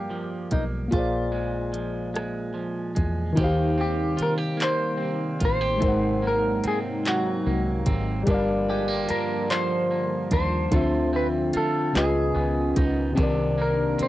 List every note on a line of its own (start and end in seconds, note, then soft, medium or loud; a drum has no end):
0.00 0.48 F1 medium
0.00 0.92 G2 medium
0.00 0.86 G3 medium
0.00 0.51 A#3 medium
0.00 0.54 G4 medium
0.00 0.87 G4 medium
0.00 0.89 A#4 medium
0.00 0.90 D5 medium
0.00 0.91 F5 medium
0.10 1.72 F3 medium
0.51 0.89 B1 medium
0.51 1.31 A#3 medium
0.51 0.63 D#4 medium
0.51 kick medium
0.51 closed hi-hat medium
0.88 3.37 A#2 medium
0.88 3.31 A#3 medium
0.88 3.33 F4 medium
0.92 2.93 A#1 medium
0.92 2.52 F4 medium
0.92 3.34 G#4 medium
0.92 kick loud
0.92 closed hi-hat medium
0.96 3.35 C5 soft
0.96 3.37 D5 medium
1.32 2.13 G#3 medium
1.73 2.53 F3 medium
1.73 closed hi-hat medium
2.14 2.94 G#3 medium
2.14 cross-stick loud
2.14 closed hi-hat medium
2.54 3.36 F3 medium
2.95 3.34 E2 medium
2.95 3.45 G#3 medium
2.95 kick medium
2.95 closed hi-hat medium
3.33 5.76 D#3 medium
3.33 6.87 D#3 medium
3.33 5.77 D#4 medium
3.37 4.15 D#2 medium
3.37 8.24 C3 medium
3.37 5.80 D#3 medium
3.37 5.80 G3 medium
3.37 10.69 A#3 medium
3.37 8.23 D#4 medium
3.37 3.44 F#4 medium
3.37 4.17 G4 medium
3.37 5.80 C5 medium
3.37 kick loud
3.37 closed hi-hat medium
3.44 5.82 G4 medium
3.44 5.82 F5 medium
3.78 4.97 C4 medium
3.78 4.22 G4 medium
4.17 4.38 F4 medium
4.17 muted fingered electric bass stroke soft
4.17 closed hi-hat medium
4.23 4.33 A#4 medium
4.38 5.40 G4 medium
4.57 6.22 A#3 medium
4.57 clap loud
4.57 closed hi-hat medium
4.63 5.39 C5 loud
4.97 5.80 C4 medium
5.40 5.79 A1 medium
5.40 5.61 F4 medium
5.40 kick medium
5.40 closed hi-hat medium
5.45 6.27 C5 loud
5.61 5.90 G4 medium
5.78 8.26 G#2 medium
5.78 8.21 G#3 medium
5.78 6.63 C4 medium
5.78 8.22 D#4 medium
5.82 6.60 G#1 medium
5.82 8.26 F#3 medium
5.82 8.26 G#3 medium
5.82 8.24 A#4 medium
5.82 8.25 C5 medium
5.82 kick loud
5.82 closed hi-hat medium
5.88 8.26 F#5 medium
6.22 7.46 A#3 medium
6.27 6.67 A#4 medium
6.64 7.85 C4 medium
6.64 6.78 G#4 medium
6.64 muted fingered electric bass stroke soft
6.64 closed hi-hat medium
7.05 8.36 F#3 medium
7.05 7.94 F#4 medium
7.05 clap loud
7.05 closed hi-hat medium
7.46 7.83 C2 medium
7.46 8.69 A#3 medium
7.86 8.24 G#1 medium
7.86 8.27 C4 medium
7.86 kick medium
7.86 closed hi-hat medium
8.23 10.72 G2 medium
8.23 11.91 D3 medium
8.23 10.66 G3 medium
8.23 9.08 D4 medium
8.23 10.67 G4 medium
8.23 kick loud
8.23 closed hi-hat medium
8.28 9.05 G1 medium
8.28 11.91 F3 medium
8.28 10.70 G3 medium
8.28 13.14 F4 medium
8.28 10.69 A#4 medium
8.28 10.70 D5 medium
8.34 10.72 F5 medium
8.69 8.88 G#3 medium
8.69 9.07 G4 medium
8.88 9.89 A#3 soft
9.08 10.30 D4 medium
9.08 9.50 A#4 loud
9.08 muted fingered electric bass stroke soft
9.08 closed hi-hat medium
9.50 12.38 F3 medium
9.50 10.28 C5 loud
9.50 clap loud
9.50 closed hi-hat medium
9.91 10.80 A#3 medium
10.31 10.69 D#2 medium
10.31 10.72 D4 medium
10.31 11.10 C5 loud
10.31 kick medium
10.31 closed hi-hat medium
10.71 11.50 D2 medium
10.71 11.94 D3 medium
10.71 11.93 A3 medium
10.71 11.93 C4 medium
10.71 11.95 D4 medium
10.71 11.52 F4 medium
10.71 11.94 F4 medium
10.71 kick loud
10.71 closed hi-hat medium
10.75 11.96 C4 medium
10.75 11.97 E5 medium
11.13 12.03 C4 medium
11.13 11.27 B4 medium
11.53 12.03 F4 medium
11.53 11.97 A4 medium
11.53 muted fingered electric bass stroke soft
11.53 closed hi-hat medium
11.93 12.32 C#2 loud
11.93 13.16 C#3 medium
11.93 13.15 C#3 medium
11.93 13.16 D#3 medium
11.93 13.16 G#3 medium
11.93 13.16 B3 medium
11.93 13.17 C#4 medium
11.93 13.16 C#4 medium
11.93 13.17 F4 medium
11.93 13.18 B4 medium
11.93 clap loud
11.93 closed hi-hat medium
11.97 12.84 G#4 medium
11.97 13.19 D#5 medium
12.35 12.72 C#2 medium
12.35 13.25 B3 medium
12.76 13.14 C#2 medium
12.76 13.16 D#4 medium
12.76 kick medium
12.76 closed hi-hat medium
13.12 14.08 C3 medium
13.12 14.08 C4 medium
13.17 13.95 C2 medium
13.17 14.08 D#3 medium
13.17 14.08 A#3 medium
13.17 14.08 C4 medium
13.17 13.98 D4 medium
13.17 14.08 D4 medium
13.17 14.08 G4 medium
13.17 14.08 A#4 medium
13.17 kick loud
13.17 closed hi-hat medium
13.23 14.08 D5 medium
13.58 14.08 A#3 medium
13.58 14.02 A#4 medium
13.98 14.08 C4 medium
13.98 muted fingered electric bass stroke soft
13.98 closed hi-hat medium
14.03 14.08 C5 medium